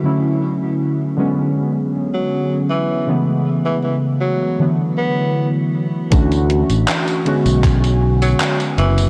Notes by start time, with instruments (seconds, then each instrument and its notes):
Already playing: ambient pad D3 E4 F#4
0.03 synth keys D3 F#3 A3 C#4 E4, ambient pad C#4
1.17 synth keys D3 F#3 G#3 B3 C#4, ambient pad B3 G#4
2.14 tenor saxophone F#3
2.70 tenor saxophone E3
3.07 synth keys C#3 E3 G#3 A3 B3, ambient pad C#3
3.65 tenor saxophone E3
3.83 tenor saxophone E3
4.21 tenor saxophone F#3
4.59 synth keys D3 E3 F#3 A3 B3, ambient pad D3 E4 F#4
4.97 tenor saxophone B3
6.10 fingered electric bass D2, synth keys E3 A3 C#4 D4 F#4, ambient pad F#4 E5 C#6, kick, closed hi-hat, tambourine
6.32 closed hi-hat, tambourine
6.50 closed hi-hat
6.70 fingered electric bass A1, closed hi-hat, tambourine
6.88 clap, closed hi-hat, tambourine
7.08 closed hi-hat, tambourine
7.25 synth keys D3 G#3 B3 C#4 F#4, ambient pad G#5, closed hi-hat
7.46 fingered electric bass B1, closed hi-hat, tambourine
7.64 kick, clap, closed hi-hat, tambourine
7.84 closed hi-hat, tambourine
8.22 tenor saxophone F#3, closed hi-hat, tambourine
8.40 clap, closed hi-hat, tambourine
8.60 closed hi-hat, tambourine
8.78 fingered electric bass F#1, tenor saxophone E3, closed hi-hat
8.98 closed hi-hat, tambourine